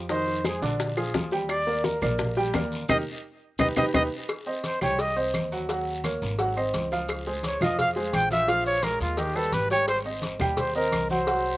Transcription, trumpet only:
0.11 C5
0.46 G#4
1.50 D5
1.85 A#4
2.90 D#5
3.60 D#5
3.78 D#5
3.95 D#5
4.65 C5
4.82 C#5
5.00 D#5
7.46 C#5
7.62 D#5
7.80 F5
8.14 G5
8.32 E5
8.49 F5
8.67 C#5
8.84 A#4
9.02 F4
9.19 G4
9.36 A4
9.54 B4
9.71 C#5
9.89 C5
10.59 C5
10.76 A#4
11.11 C5

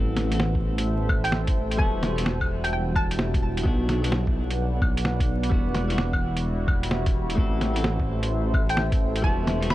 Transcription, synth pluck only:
1.24 G5
1.79 A5
2.64 G5
2.73 G5
2.96 A5
8.70 G5
9.24 A5
9.70 B5

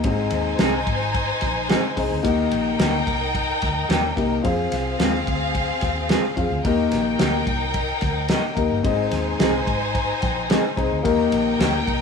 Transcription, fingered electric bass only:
0.04 G#1
0.31 D#2
0.59 C2
0.87 G#1
1.42 A#1
1.97 C2
2.11 D2
2.25 D#2
2.52 A#1
2.79 D2
3.07 C2
3.62 D2
3.89 D#2
4.17 C2
4.45 F2
4.72 C2
5.00 D#2
5.27 D2
5.83 D#2
6.37 F2
6.51 D2
6.65 D#2
6.92 A#1
7.20 D2
7.46 C2
8.02 D2
8.57 D#2
8.70 G1
8.85 G#1
9.11 D#2
9.39 C2
9.67 G#1
10.23 A#1
10.77 C2
10.91 D2
11.05 D#2
11.32 A#1
11.59 D2
11.87 C2

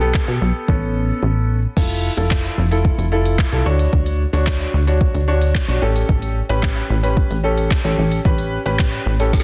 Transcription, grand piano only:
0.01 B3 G4 A4
0.68 B3 C#4 A4
1.77 E4 F4 A4
2.17 E4 F4 A4
2.71 E4 F4 A4
3.12 E4 F4 A4
3.52 E4 F4 A4
3.66 D4 F#4 C#5
4.33 D4 F#4 C#5
4.87 D4 F#4 C#5
5.28 D4 F#4 C#5
5.68 D4 F#4 C#5
5.82 C#4 G4 A4
6.49 C#4 G4 B4
7.03 C#4 G4 B4
7.44 C#4 G4 A4
7.84 C#4 G4 A4
8.25 C#4 G4 B4
8.66 C#4 G4 B4
9.20 C#4 G4 A4

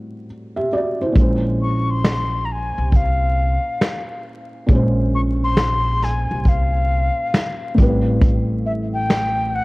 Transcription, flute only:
1.62 C#6
1.90 C6
2.45 A#5
2.52 G#5
2.96 F5
5.15 C#6
5.44 C6
6.04 G#5
6.48 F5
8.66 E5
8.94 G5
9.55 F#5

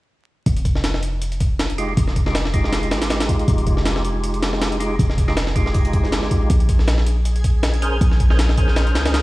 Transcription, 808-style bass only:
0.46 F1
1.97 F1
2.91 G#1
3.48 F1
4.99 F1
6.12 G1
6.41 C2
6.50 A#1
8.01 A#1
8.95 C#2

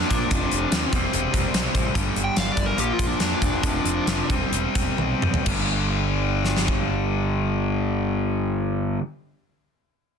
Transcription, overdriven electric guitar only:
Already playing: A#2 F3 A#3
0.31 F2 C3 F3
0.93 C3 G3 C4
1.94 G2 D3 G3
2.77 A#2 F3 A#3
3.63 F2 C3 F3
4.29 C3 G3 C4
5.45 G2 D3 G3

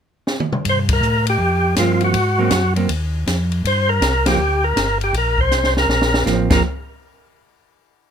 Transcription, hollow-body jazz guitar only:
1.78 F3 A#3 C4
2.38 F#3 A#3 C4
2.76 F#3 A#3 C4
4.26 F3 A#3 C4
6.26 F3 A#3 C4
6.50 F3 A#3 C4

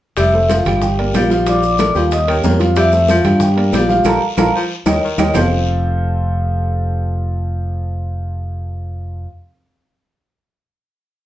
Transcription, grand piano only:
0.34 A3 A4 C5
0.66 G3 G4 G5
0.99 A#3 A#4 D5
1.30 F3 F4 F5
1.47 F3 F4 F5
1.79 A3 A4 A#4
1.95 G3 G4 G5
2.28 A#3 A#4 C#5
2.43 A#3 A#4 C#5
2.60 F3 F4 F5
2.93 A3 A4 C5
3.24 G3 G4 G5
3.57 A#3 A#4 D5
3.89 F3 F4 F5
4.05 F4 A4 A#4
4.37 F4 A4 A#4
4.86 D#4 G4 A#4
5.19 D#4 G4 A#4
5.34 F3 C4 F4 G4 A4 C5

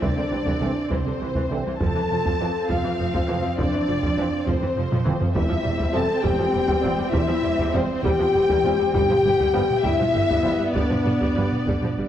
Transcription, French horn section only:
0.05 D4
0.92 C4
1.81 A4
2.72 F4
3.60 D4
4.47 C4
5.36 E4
5.93 A4
6.22 G4
7.10 E4
7.73 C4
8.05 G4
8.93 G4
9.85 E4
10.76 D4

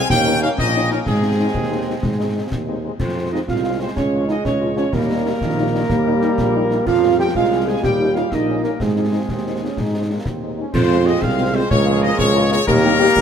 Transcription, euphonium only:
2.99 C4
3.32 D#4
3.47 F4
3.79 C4
3.96 C#4
4.28 D#4
4.44 C#4
4.76 C#4
4.94 A#3
6.86 F4
7.18 G4
7.35 F4
7.67 G#4
7.83 G4
8.15 F4
8.32 D#4
8.64 A#3
8.80 G#3
10.74 F4
11.22 G#4
11.71 G#4
12.67 G4

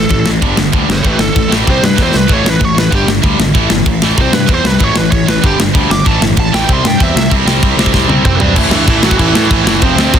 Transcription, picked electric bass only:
0.10 A1
0.26 A1
0.42 G1
0.57 G1
0.73 D2
0.88 G1
1.04 A1
1.18 G1
1.36 A1
1.51 A1
1.67 C2
1.82 G2
1.98 E2
2.14 C2
2.29 A1
2.44 A1
2.61 A1
2.75 A1
2.92 G1
3.06 G1
3.23 D2
3.38 G#1
3.55 A1
3.70 G1
3.86 A1
4.02 A1
4.18 C2
4.32 G2
4.48 E2
4.64 C2
4.80 A1
4.95 A1
5.12 A1
5.26 A1
5.43 G1
5.59 G1
5.75 D2
5.90 G1
6.06 A1
6.21 G1
6.37 A1
6.54 A1
6.69 C2
6.84 G2
7.00 E2
7.15 C2
7.31 C2
7.45 C2
7.63 C2
7.77 C2
7.94 C2
8.08 C2
8.25 C2
8.40 B1
8.56 A1
8.71 G2
8.87 A1
9.02 A1
9.19 A1
9.33 A2
9.50 A1
9.65 F#1
9.82 F1
9.96 D2
10.14 F1

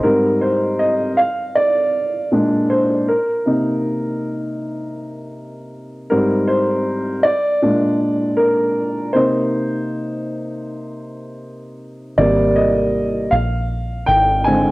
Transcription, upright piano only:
Already playing: D#5
0.03 G#2 G3 C4 A#4
0.41 C5
0.79 D#5
1.17 F5
1.55 D5
2.31 A#2 G#3 D4
2.70 C5
3.08 A#4
3.46 C3 A#3 D#4
6.10 G#2 G3 C4 A#4
6.47 C5
7.23 D5
7.62 A#2 G#3 D4
8.37 A#4
9.13 C3 A#3 D#4 C5
12.18 C3 G3 A#3 D5
12.56 D#5
13.31 F5
14.06 G5
14.44 D3 G#3 C4 G#5

